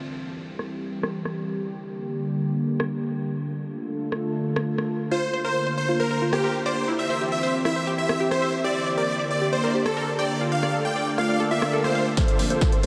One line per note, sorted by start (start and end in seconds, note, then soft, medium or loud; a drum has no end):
0.00 1.57 E3 medium
0.00 3.31 G3 medium
0.00 1.55 C4 medium
0.00 3.31 G4 medium
0.59 cross-stick medium
1.03 cross-stick medium
1.25 cross-stick medium
1.58 3.33 D3 medium
1.58 3.33 A#3 medium
2.80 cross-stick medium
3.35 5.10 D3 medium
3.35 5.10 A3 medium
3.35 6.84 F4 medium
3.35 5.10 A4 medium
4.12 cross-stick medium
4.56 cross-stick medium
4.78 cross-stick medium
5.11 6.86 D3 medium
5.11 6.86 A#3 medium
5.11 5.18 F4 medium
5.11 5.33 C5 medium
5.11 5.33 C5 loud
5.11 8.61 C5 medium
5.33 5.37 C5 loud
5.44 5.51 A#4 medium
5.44 5.66 C5 medium
5.67 5.71 C5 loud
5.78 5.92 C5 medium
5.89 5.95 F4 medium
6.00 6.22 A#4 medium
6.00 6.06 C5 medium
6.11 6.17 A#4 loud
6.22 6.32 F4 medium
6.33 6.55 G4 medium
6.33 cross-stick medium
6.44 6.50 A#4 medium
6.66 6.88 C5 medium
6.66 6.72 D5 loud
6.88 8.63 E3 medium
6.88 8.63 C4 medium
6.88 6.95 E4 medium
6.88 10.37 G4 medium
6.99 7.21 E5 medium
7.10 7.14 C5 loud
7.21 7.28 G4 medium
7.32 7.54 E5 medium
7.43 7.47 C5 loud
7.65 7.72 E4 medium
7.65 7.87 E5 medium
7.65 cross-stick medium
7.76 7.83 C5 medium
7.87 7.94 G4 loud
7.98 8.08 E4 medium
7.98 8.20 E5 medium
8.09 cross-stick medium
8.20 8.27 G4 medium
8.31 8.53 C5 medium
8.31 cross-stick medium
8.42 8.49 E5 loud
8.64 12.14 D3 medium
8.64 10.39 A#3 medium
8.64 8.71 G4 medium
8.64 10.39 D5 medium
8.64 8.86 D5 loud
8.86 8.90 D5 loud
8.97 9.04 A#4 medium
8.97 9.19 D5 medium
9.19 9.23 D5 medium
9.31 9.45 D5 medium
9.42 9.48 G4 medium
9.53 9.75 C5 loud
9.53 9.75 C5 medium
9.53 9.59 D5 medium
9.64 9.70 A#4 loud
9.75 9.85 G4 medium
9.86 10.08 A4 loud
9.86 10.08 A4 medium
9.86 cross-stick medium
9.97 10.03 A#4 loud
10.19 10.41 D5 medium
10.19 10.25 G5 loud
10.41 12.16 A3 medium
10.41 12.16 F4 medium
10.41 10.47 F4 medium
10.41 12.16 D5 medium
10.52 10.74 F5 medium
10.63 10.67 D5 loud
10.63 cross-stick medium
10.74 10.81 A4 medium
10.85 11.07 G5 medium
10.85 11.07 G5 loud
10.96 11.00 D5 loud
11.18 11.25 F4 medium
11.18 11.40 F5 medium
11.18 11.40 F5 loud
11.18 cross-stick medium
11.29 11.36 D5 medium
11.29 swell medium
11.40 11.47 A4 loud
11.51 11.61 F4 medium
11.51 11.73 E5 medium
11.51 11.73 E5 loud
11.62 cross-stick medium
11.73 11.80 A4 loud
11.84 12.06 C5 medium
11.84 cross-stick medium
11.95 12.02 F5 loud
12.17 12.86 D3 medium
12.17 12.86 A#3 medium
12.17 12.86 C4 medium
12.17 12.86 F4 medium
12.17 12.24 F4 medium
12.17 12.39 A4 medium
12.17 12.39 C5 loud
12.17 kick loud
12.17 snare soft
12.17 closed hi-hat medium
12.28 closed hi-hat medium
12.39 12.57 A#1 loud
12.39 12.43 C5 loud
12.39 open hi-hat loud
12.50 12.72 A4 medium
12.50 12.57 A#4 medium
12.50 12.72 C5 medium
12.50 12.72 C5 loud
12.50 closed hi-hat medium
12.61 kick loud
12.61 snare soft
12.61 closed hi-hat medium
12.72 12.76 C5 loud
12.72 closed hi-hat soft